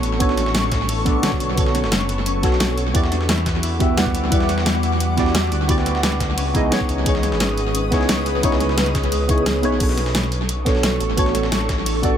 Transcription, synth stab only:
0.00 1.23 D3 medium
0.00 0.19 B3 medium
0.00 0.20 D4 medium
0.00 0.20 F#4 medium
0.00 0.21 A4 medium
0.00 0.22 C#5 loud
0.19 0.35 B3 loud
0.19 0.35 D4 medium
0.19 0.36 F#4 medium
0.19 0.36 A4 medium
0.19 0.36 C#5 loud
1.05 1.20 B3 loud
1.05 1.21 D4 medium
1.05 1.21 F#4 medium
1.05 1.21 A4 medium
1.05 1.22 D5 loud
1.22 1.55 D3 medium
1.22 1.54 B3 medium
1.22 1.56 F#4 medium
1.22 1.56 A4 medium
1.22 1.56 C#5 loud
1.55 2.41 D3 medium
1.55 2.40 B3 medium
1.55 2.41 F#4 medium
1.55 2.42 A4 medium
1.60 2.42 C#5 medium
2.42 2.52 B3 medium
2.42 2.53 D4 medium
2.42 2.53 F#4 medium
2.42 2.53 A4 medium
2.42 2.54 C#5 loud
2.93 3.09 B3 loud
2.93 3.10 E4 medium
2.93 3.10 F#4 medium
2.93 3.10 G4 medium
2.93 3.11 D5 loud
3.79 3.95 B3 medium
3.79 3.95 E4 medium
3.79 3.96 F#4 medium
3.79 3.96 G4 medium
3.79 3.96 E5 loud
3.96 4.30 G3 medium
3.96 4.28 B3 medium
3.96 4.29 E4 medium
3.96 4.31 D5 loud
3.96 4.30 F#5 medium
4.29 5.16 G3 medium
4.29 5.14 B3 medium
4.29 5.15 E4 medium
4.29 5.15 F#5 medium
4.34 5.17 D5 medium
5.16 5.27 B3 medium
5.16 5.27 E4 medium
5.16 5.27 F#4 medium
5.16 5.28 G4 medium
5.16 5.28 D5 loud
5.68 5.84 B3 loud
5.68 5.84 E4 medium
5.68 5.84 F#4 medium
5.68 5.85 G4 medium
5.68 5.85 D5 loud
6.53 6.69 B3 medium
6.53 6.69 D#4 medium
6.53 6.70 E4 medium
6.53 6.70 G#4 medium
6.53 6.70 D#5 loud
6.70 7.04 E3 medium
6.70 7.02 B3 medium
6.70 7.03 D#4 medium
6.70 7.04 G#4 medium
6.70 7.05 C#5 loud
7.03 7.90 E3 medium
7.03 7.88 B3 medium
7.03 7.89 D#4 medium
7.03 7.90 G#4 medium
7.09 7.91 C#5 medium
7.91 8.01 B3 medium
7.91 8.01 D#4 medium
7.91 8.01 E4 medium
7.91 8.02 G#4 medium
7.91 8.02 C#5 loud
8.42 8.58 B3 loud
8.42 8.58 D#4 medium
8.42 8.59 E4 loud
8.42 8.59 G#4 medium
8.42 8.59 C#5 loud
9.28 9.61 B3 medium
9.28 9.61 D#4 medium
9.28 9.61 E4 medium
9.28 9.62 G#4 medium
9.28 9.62 C#5 loud
9.62 9.77 B3 loud
9.62 9.78 D#4 medium
9.62 9.79 E4 medium
9.62 9.79 G#4 medium
9.62 9.79 C#5 loud
9.78 10.63 B3 medium
9.78 10.64 D4 medium
9.78 10.64 F#4 medium
9.82 10.65 A4 medium
9.82 10.65 C#5 medium
10.65 10.75 B3 medium
10.65 10.75 D4 medium
10.65 10.76 F#4 medium
10.65 10.76 A4 medium
10.65 10.76 C#5 loud
11.16 11.32 B3 loud
11.16 11.32 D4 medium
11.16 11.33 F#4 medium
11.16 11.33 A4 medium
11.16 11.33 C#5 loud
12.02 12.18 B3 medium
12.02 12.18 D4 medium
12.02 12.18 F#4 medium
12.02 12.18 A4 medium
12.02 12.18 D5 loud

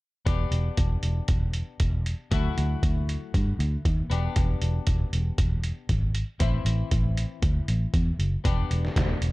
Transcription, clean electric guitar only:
0.26 2.29 B3 medium
0.26 2.32 D4 medium
0.26 2.30 G4 medium
2.31 4.09 F#3 medium
2.31 4.09 A3 medium
2.31 4.11 E4 medium
2.31 4.10 F#4 medium
4.10 6.13 B3 medium
4.10 6.14 D4 medium
4.10 6.14 G4 medium
6.40 8.48 E3 medium
6.40 8.44 C4 medium
6.40 8.45 E4 medium
8.44 9.32 B3 medium
8.44 9.32 D4 medium
8.44 9.32 G4 medium

